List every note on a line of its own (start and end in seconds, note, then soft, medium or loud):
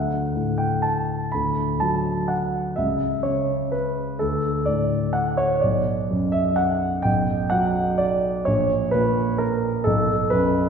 0.00 1.30 D2 soft
0.00 0.60 F#5 soft
0.36 1.91 A2 soft
0.58 0.84 G5 medium
0.82 1.33 A5 soft
1.32 2.75 D2 soft
1.32 1.80 B5 medium
1.80 2.79 F#3 soft
1.80 2.30 A5 medium
2.28 2.77 F#5 soft
2.76 4.17 C#2 soft
2.76 3.23 E5 medium
3.23 4.21 C#3 soft
3.23 3.72 C#5 soft
3.72 4.20 B4 medium
4.19 5.59 D2 soft
4.19 4.66 A4 medium
4.66 5.63 A2 soft
4.66 5.14 D5 medium
5.13 5.38 F#5 medium
5.37 5.62 C#5 medium
5.61 7.02 B1 soft
5.61 6.34 D5 soft
6.11 7.62 F#2 soft
6.32 6.58 E5 medium
6.56 7.04 F#5 medium
7.02 8.43 B1 soft
7.02 7.51 G5 medium
7.50 8.47 F#3 soft
7.50 7.99 F#5 medium
7.98 8.46 D5 medium
8.45 9.83 A#1 soft
8.45 8.93 C#5 medium
8.91 9.88 A#2 soft
8.91 9.40 B4 medium
9.38 9.86 A#4 medium
9.84 10.69 B1 soft
9.84 10.30 A4 medium
10.30 10.69 F#2 soft
10.30 10.69 B4 medium